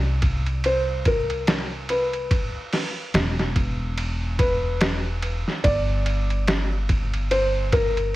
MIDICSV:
0, 0, Header, 1, 4, 480
1, 0, Start_track
1, 0, Tempo, 833333
1, 1331, Time_signature, 4, 2, 24, 8
1, 4698, End_track
2, 0, Start_track
2, 0, Title_t, "Felt piano"
2, 0, Program_c, 0, 0
2, 0, Note_on_c, 0, 74, 92
2, 378, Note_on_c, 0, 72, 88
2, 400, Note_off_c, 0, 74, 0
2, 619, Note_on_c, 0, 70, 81
2, 622, Note_off_c, 0, 72, 0
2, 1072, Note_off_c, 0, 70, 0
2, 1093, Note_on_c, 0, 71, 72
2, 1549, Note_off_c, 0, 71, 0
2, 2527, Note_on_c, 0, 71, 85
2, 3247, Note_on_c, 0, 74, 96
2, 3271, Note_off_c, 0, 71, 0
2, 4211, Note_on_c, 0, 72, 91
2, 4238, Note_off_c, 0, 74, 0
2, 4434, Note_off_c, 0, 72, 0
2, 4453, Note_on_c, 0, 70, 95
2, 4698, Note_off_c, 0, 70, 0
2, 4698, End_track
3, 0, Start_track
3, 0, Title_t, "Upright bass"
3, 0, Program_c, 1, 32
3, 0, Note_on_c, 1, 36, 91
3, 1312, Note_off_c, 1, 36, 0
3, 1809, Note_on_c, 1, 28, 77
3, 3123, Note_off_c, 1, 28, 0
3, 3251, Note_on_c, 1, 31, 90
3, 4698, Note_off_c, 1, 31, 0
3, 4698, End_track
4, 0, Start_track
4, 0, Title_t, "Drums"
4, 127, Note_on_c, 9, 51, 61
4, 129, Note_on_c, 9, 36, 79
4, 184, Note_off_c, 9, 51, 0
4, 186, Note_off_c, 9, 36, 0
4, 268, Note_on_c, 9, 51, 40
4, 325, Note_off_c, 9, 51, 0
4, 368, Note_on_c, 9, 51, 75
4, 426, Note_off_c, 9, 51, 0
4, 607, Note_on_c, 9, 51, 62
4, 608, Note_on_c, 9, 36, 84
4, 664, Note_off_c, 9, 51, 0
4, 666, Note_off_c, 9, 36, 0
4, 748, Note_on_c, 9, 51, 39
4, 805, Note_off_c, 9, 51, 0
4, 848, Note_on_c, 9, 51, 72
4, 852, Note_on_c, 9, 38, 97
4, 906, Note_off_c, 9, 51, 0
4, 910, Note_off_c, 9, 38, 0
4, 1089, Note_on_c, 9, 51, 63
4, 1146, Note_off_c, 9, 51, 0
4, 1229, Note_on_c, 9, 51, 39
4, 1287, Note_off_c, 9, 51, 0
4, 1329, Note_on_c, 9, 36, 96
4, 1330, Note_on_c, 9, 51, 80
4, 1387, Note_off_c, 9, 36, 0
4, 1387, Note_off_c, 9, 51, 0
4, 1570, Note_on_c, 9, 46, 72
4, 1574, Note_on_c, 9, 38, 48
4, 1628, Note_off_c, 9, 46, 0
4, 1632, Note_off_c, 9, 38, 0
4, 1809, Note_on_c, 9, 51, 76
4, 1813, Note_on_c, 9, 38, 94
4, 1867, Note_off_c, 9, 51, 0
4, 1871, Note_off_c, 9, 38, 0
4, 1955, Note_on_c, 9, 38, 44
4, 2012, Note_off_c, 9, 38, 0
4, 2049, Note_on_c, 9, 36, 79
4, 2049, Note_on_c, 9, 51, 56
4, 2106, Note_off_c, 9, 36, 0
4, 2107, Note_off_c, 9, 51, 0
4, 2290, Note_on_c, 9, 51, 71
4, 2347, Note_off_c, 9, 51, 0
4, 2529, Note_on_c, 9, 36, 85
4, 2529, Note_on_c, 9, 51, 61
4, 2587, Note_off_c, 9, 36, 0
4, 2587, Note_off_c, 9, 51, 0
4, 2768, Note_on_c, 9, 51, 75
4, 2772, Note_on_c, 9, 38, 96
4, 2826, Note_off_c, 9, 51, 0
4, 2830, Note_off_c, 9, 38, 0
4, 3009, Note_on_c, 9, 51, 57
4, 3067, Note_off_c, 9, 51, 0
4, 3154, Note_on_c, 9, 38, 33
4, 3212, Note_off_c, 9, 38, 0
4, 3249, Note_on_c, 9, 36, 93
4, 3250, Note_on_c, 9, 51, 80
4, 3307, Note_off_c, 9, 36, 0
4, 3307, Note_off_c, 9, 51, 0
4, 3490, Note_on_c, 9, 51, 57
4, 3548, Note_off_c, 9, 51, 0
4, 3631, Note_on_c, 9, 51, 39
4, 3688, Note_off_c, 9, 51, 0
4, 3729, Note_on_c, 9, 51, 72
4, 3733, Note_on_c, 9, 38, 97
4, 3787, Note_off_c, 9, 51, 0
4, 3791, Note_off_c, 9, 38, 0
4, 3969, Note_on_c, 9, 51, 61
4, 3970, Note_on_c, 9, 36, 84
4, 4027, Note_off_c, 9, 36, 0
4, 4027, Note_off_c, 9, 51, 0
4, 4110, Note_on_c, 9, 51, 42
4, 4167, Note_off_c, 9, 51, 0
4, 4211, Note_on_c, 9, 51, 76
4, 4268, Note_off_c, 9, 51, 0
4, 4449, Note_on_c, 9, 51, 61
4, 4450, Note_on_c, 9, 36, 86
4, 4507, Note_off_c, 9, 51, 0
4, 4508, Note_off_c, 9, 36, 0
4, 4592, Note_on_c, 9, 51, 39
4, 4649, Note_off_c, 9, 51, 0
4, 4698, End_track
0, 0, End_of_file